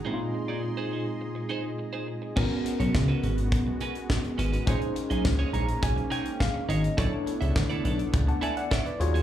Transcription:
<<
  \new Staff \with { instrumentName = "Tine electric piano" } { \time 4/4 \key ais \phrygian \tempo 4 = 104 << { r1 | r1 | r4. ais''8 gis''8 g''8 eis''8 dis''8 | r2 r16 <fis'' a''>16 <e'' gis''>16 <d'' fis''>16 <cis'' e''>16 <b' d''>8 r16 | } \\ { <ais, gis bis dis' e' eis'>1 | <b cis' fis' ais'>1 | <cis' dis' gis' bis'>1 | <d' e' a' cis''>2.~ <d' e' a' cis''>8 <eis' fis' gis' cis''>8 | } >> }
  \new Staff \with { instrumentName = "Clean electric guitar" } { \time 4/4 \key ais \phrygian <dis' gis' bis'>16 r8 <dis' gis' d''>16 r16 <dis' gis' bis'>16 <dis' gis' bis'>16 r8. <dis' gis' bis'>16 r8 <dis' gis' bis'>16 r8 | <cis' fis' b'>16 r8 <cis' fis' cis''>16 r16 <cis' fis' b'>16 <cis' fis' b'>16 r8. <cis' fis' b'>16 r8. <cis' fis' b'>16 <cis' fis' b'>16 | <dis' gis' cis''>16 r8 <dis' gis' dis''>16 r16 <dis' gis' cis''>16 <dis' gis' cis''>16 r8. <dis' gis' cis''>16 r8. <dis' gis' cis''>16 r16 | <e' a' d''>16 r8 <e' a' e''>16 r16 <e' a' d''>16 <e' a' d''>16 r8. <e' a' d''>16 r16 <e' a' d''>16 r8 <fis' gis' cis''>16 | }
  \new Staff \with { instrumentName = "Analog synth pad" } { \time 4/4 \key ais \phrygian << { <gis' ais'' bis''>1 | <b fis'>1 | <ais cis'>1 | <b d'>2.~ <b d'>8 <dis fis ais cis' gis'>8 | } \\ { dis''1 | gis1~ | gis1 | a2.~ a8 eis''8 | } >> }
  \new Staff \with { instrumentName = "Analog synth bass" } { \clef bass \time 4/4 \key ais \phrygian r1 | gis,,16 r8 b,,16 cis,8 gis,,8 b,,8 r4 gis,,8 | ais,,16 r8 b,,16 cis,8 ais,,8 b,,8 r4 gis,,8 | b,,16 r8 cis,16 d,8 b,,8 cis,8 r4 dis,8 | }
  \new DrumStaff \with { instrumentName = "Drums" } \drummode { \time 4/4 r4 r4 r4 r4 | <cymc bd>8 hh16 hh16 <bd sn>8 hh16 hh16 <hh bd>8 hh16 hh16 <bd sn>16 hh16 hh16 hh16 | <hh bd>16 hh16 hh16 hh16 <bd sn>8 hh16 hh16 <hh bd>16 hh16 hh16 hh16 <bd sn>8 hh16 hh16 | <hh bd>8 hh16 hh16 <bd sn>16 hh16 hh16 hh16 <hh bd>16 hh16 hh16 hh16 <bd sn>16 hh16 hh16 hh16 | }
>>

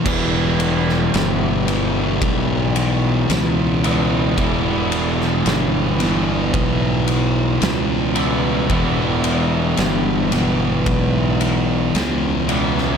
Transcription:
<<
  \new Staff \with { instrumentName = "Overdriven electric guitar" } { \time 4/4 \key e \dorian \tempo 4 = 56 <e g b e'>2.~ <e g b e'>8 <e g b e'>8 | <e g b e'>2.~ <e g b e'>8 <e g b e'>8 | <e g b e'>2.~ <e g b e'>8 <e g b e'>8 | }
  \new Staff \with { instrumentName = "Distorted electric guitar" } { \clef bass \time 4/4 \key e \dorian <e, b, e>4. <e, b, e>4. <e, b, e>4 | <e, b, e>4. <e, b, e>4. <e, b, e>4 | <e, b, e>4. <e, b, e>4. <e, b, e>4 | }
  \new Staff \with { instrumentName = "Distorted electric guitar" } { \clef bass \time 4/4 \key e \dorian <e, b, e>4. <e, b, e>2~ <e, b, e>8 | <e, b, e>4. <e, b, e>2~ <e, b, e>8 | <e, b, e>4. <e, b, e>2~ <e, b, e>8 | }
  \new Staff \with { instrumentName = "Fingered electric bass" } { \clef bass \time 4/4 \key e \dorian e,,4 g,,4 b,,4 cis,4 | e,,4 g,,4 b,,4 cis,4 | e,,4 g,,4 b,,4 cis,4 | }
  \new DrumStaff \with { instrumentName = "Drums" } \drummode { \time 4/4 <cymc bd>8 cymr16 sn16 <cymr sn>8 cymr8 <bd cymr>8 cymr8 <cymr sn>8 cymr8 | <bd cymr>8 cymr16 sn16 <cymr sn>8 <cymr sn>8 <bd cymr>8 cymr8 <cymr sn>8 cymr8 | <bd cymr>8 cymr8 <cymr sn>8 <cymr sn>8 <bd cymr>8 cymr8 <cymr sn>8 cymr16 sn16 | }
>>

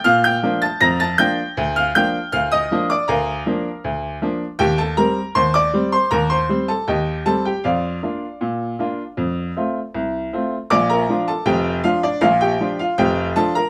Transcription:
<<
  \new Staff \with { instrumentName = "Upright piano" } { \time 2/4 \key bes \major \tempo 4 = 79 <f'' f'''>16 <g'' g'''>8 <a'' a'''>16 <bes'' bes'''>16 <a'' a'''>16 <g'' g'''>8~ | <g'' g'''>16 <f'' f'''>16 <g'' g'''>8 <f'' f'''>16 <ees'' ees'''>8 <d'' d'''>16 | <bes' f'' bes''>4 r4 | <g' g''>16 <a' a''>16 <bes' bes''>8 <c'' c'''>16 <d'' d'''>8 <c'' c'''>16 |
<bes' bes''>16 <c'' c'''>8 <a' a''>16 <g' ees'' g''>8 <a' a''>16 <g' g''>16 | <f' d'' f''>2~ | <f' d'' f''>4. r8 | <d'' d'''>16 <bes' bes''>8 <a' a''>16 <g' g''>8 <f' f''>16 <d' d''>16 |
<f' f''>16 <g' g''>8 <f' f''>16 <g' g''>8 <a' a''>16 <bes' bes''>16 | }
  \new Staff \with { instrumentName = "Upright piano" } { \clef bass \time 2/4 \key bes \major bes,8 <f bes d'>8 f,8 <f bes d'>8 | d,8 <f bes d'>8 d,8 <f bes d'>8 | d,8 <f bes d'>8 d,8 <f bes d'>8 | ees,8 <g c'>8 ees,8 <g c'>8 |
ees,8 <g c'>8 ees,8 <g c'>8 | f,8 <bes d' f'>8 bes,8 <bes d' f'>8 | f,8 <a c' f'>8 c,8 <a c' f'>8 | <bes,, bes,>8 <f d' f'>8 <f,, f,>8 <f d'>8 |
<bes,, bes,>8 <f d' f'>8 <f,, f,>8 <f d' f'>8 | }
>>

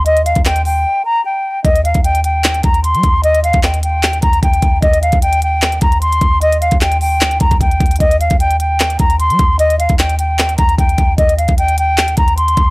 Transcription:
<<
  \new Staff \with { instrumentName = "Flute" } { \time 4/4 \key ees \major \tempo 4 = 151 ees''8 f''8 g''8 g''4 bes''8 g''4 | ees''8 f''8 g''8 g''4 bes''8 c'''4 | ees''8 f''8 g''8 g''4 bes''8 g''4 | ees''8 f''8 g''8 g''4 bes''8 c'''4 |
ees''8 f''8 g''8 g''4 bes''8 g''4 | ees''8 f''8 g''8 g''4 bes''8 c'''4 | ees''8 f''8 g''8 g''4 bes''8 g''4 | ees''8 f''8 g''8 g''4 bes''8 c'''4 | }
  \new Staff \with { instrumentName = "808-style bass" } { \clef bass \time 4/4 \key ees \major ees,8. ees,4~ ees,16 r2 | ees,8. ees,4.~ ees,16 ees,8. g16 ees,8~ | ees,8. ees,4.~ ees,16 ees,8 ees,8 ees,8 | ees,8. ees,4.~ ees,16 ees,4 ees,8~ |
ees,8. ees,4~ ees,16 d,16 ees,16 ees,4 ees,8 | ees,8. ees,4.~ ees,16 ees,8. g16 ees,8~ | ees,8. ees,4.~ ees,16 ees,8 ees,8 ees,8 | ees,8. ees,4.~ ees,16 ees,4 ees,8 | }
  \new DrumStaff \with { instrumentName = "Drums" } \drummode { \time 4/4 hh16 hh16 hh16 <hh bd>16 <hc hh>16 hh16 hho8 r4 r4 | <hh bd>16 hh16 hh16 <hh bd>16 hh16 hh16 hh8 <hc hh>16 hh16 <hh bd>16 hh16 hh16 hh16 <hh bd>8 | hh16 hh16 hh16 <hh bd>16 <hc hh>16 hh16 hh8 <hc hh>16 hh16 <hh bd>16 hh16 <hh bd>16 hh16 <hh bd>8 | <hh bd>16 hh16 hh16 <hh bd>16 hh16 hh16 hh8 <hc hh>16 hh16 <hh bd>16 hh16 hh16 hh16 <hh bd>8 |
hh16 hh16 hh16 <hh bd>16 <hc hh>16 hh16 hho8 <hc hh>16 hh16 <hh bd>16 <hh bd>16 <hh bd>16 hh16 <hh bd>32 hh32 hh32 hh32 | <hh bd>16 hh16 hh16 <hh bd>16 hh16 hh16 hh8 <hc hh>16 hh16 <hh bd>16 hh16 hh16 hh16 <hh bd>8 | hh16 hh16 hh16 <hh bd>16 <hc hh>16 hh16 hh8 <hc hh>16 hh16 <hh bd>16 hh16 <hh bd>16 hh16 <hh bd>8 | <hh bd>16 hh16 hh16 <hh bd>16 hh16 hh16 hh8 <hc hh>16 hh16 <hh bd>16 hh16 hh16 hh16 <hh bd>8 | }
>>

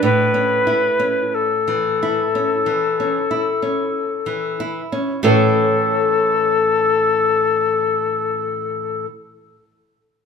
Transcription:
<<
  \new Staff \with { instrumentName = "Recorder" } { \time 4/4 \key a \major \tempo 4 = 47 b'4 a'2~ a'8 r8 | a'1 | }
  \new Staff \with { instrumentName = "Nylon-string guitar" } { \time 4/4 \key a \major a,16 cis'16 e'16 cis'8 e16 e'16 cis'16 e16 cis'16 e'16 cis'8 e16 e'16 cis'16 | <a, e cis' e' a' cis''>1 | }
>>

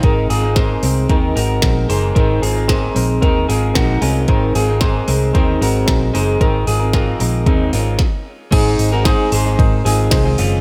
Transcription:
<<
  \new Staff \with { instrumentName = "Reed electric piano" } { \time 4/4 \key aes \mixolydian \tempo 4 = 113 <c' aes' bes'>8 r8 <c' aes' bes'>8 r8 <c' aes' bes'>8 r8 <c' aes' bes'>8 r8 | <c' aes' c''>8 r8 <c' aes' bes'>8 r8 <c' aes' bes'>8 r8 <c' aes' bes' bes''>8 aes''8 | <c' aes' c''>8 r8 <c' aes' c''>8 r8 <c' aes' c''>8 r8 <c' aes' bes'>8 r8 | <c' aes' bes'>8 r8 <c' aes' bes'>8 r8 <c' aes' bes'>8 r4. |
<ees' aes' c''>8 r8 <ees' aes' c''>8 r8 <ees' aes' bes'>8 r8 <ees' aes' c''>8 r8 | }
  \new Staff \with { instrumentName = "Clean electric guitar" } { \time 4/4 \key aes \mixolydian <ees' bes'>8 <f' aes'>8 <aes' c''>4 <ees' bes'>8 <ges' bes'>4 <aes' c''>8 | <ees' bes'>8 <f' aes'>8 <aes' c''>4 <ees' bes'>8 <f' aes'>8 <ees' ges'>8 <des' f'>8 | <ees' bes'>8 <f' aes'>8 <aes' c''>4 <ees' bes'>8 <ges' bes'>4 <aes' c''>8 | <ees' bes'>8 <f' aes'>8 <c' f'>4 <c' ees'>8 <des' f'>8 r4 |
<ees' aes'>8. <ges' bes'>16 <ees' aes'>8 <aes' c''>4 <f' aes'>4 <des' f'>8 | }
  \new Staff \with { instrumentName = "Clean electric guitar" } { \time 4/4 \key aes \mixolydian <aes c' ees' bes'>8. <c' ees' bes'>8. <aes c' ees' bes'>8 <aes c' ees' bes'>8 <aes c' ees' bes'>4 <aes c' ees' bes'>8 | <aes c' ees' bes'>8. <c' ees' bes'>8. <aes c' ees' bes'>8 <aes c' ees' bes'>8 <aes c' ees' bes'>4 <aes c' ees' bes'>8 | <aes c' ees' bes'>8. <c' ees' bes'>8. <aes c' ees' bes'>8 <aes c' ees' bes'>8 <aes c' ees' bes'>4 <aes c' ees' bes'>8 | <aes c' bes'>8. <c' ees' bes'>8. <aes c' ees' bes'>8 <aes c' ees' bes'>8 <aes c' ees' bes'>8 r4 |
<aes c' ees' aes'>8. <aes c' ees' aes'>4 <aes c' ees' aes'>8. <aes c' ees' aes'>8. <aes, ees aes c' ees' aes'>8. | }
  \new Staff \with { instrumentName = "Fingered electric bass" } { \clef bass \time 4/4 \key aes \mixolydian aes,,8 aes,,4 c,8 ees,8 aes,,8 bes,,8 ges,,8 | aes,,8 aes,,4 bes,,8 ees,8 aes,,8 bes,,8 c,8 | aes,,8 aes,,4 c,8 ees,8 aes,,8 bes,,8 ges,,8 | aes,,8 aes,,4 bes,,8 ees,8 aes,,8 r4 |
aes,,8 aes,,8. r16 aes,,8 aes,8 aes,,8 c,8 ges,,8 | }
  \new DrumStaff \with { instrumentName = "Drums" } \drummode { \time 4/4 <hh bd>8 hho8 <hh bd sn>8 hho8 <hh bd>8 hho8 <hh bd sn>8 hho8 | <hh bd>8 hho8 <hh bd sn>8 hho8 <hh bd>8 hho8 <hh bd sn>8 hho8 | <hh bd>8 hho8 <hh bd sn>8 hho8 <hh bd>8 hho8 <hh bd sn>8 hho8 | <hh bd>8 hho8 <hh bd sn>8 hho8 <hh bd>8 hho8 <bd sn>4 |
<cymc bd cymr>8 hho8 <bd cymr sn>8 hho8 <bd cymr>8 hho8 <bd cymr sn>8 hho8 | }
>>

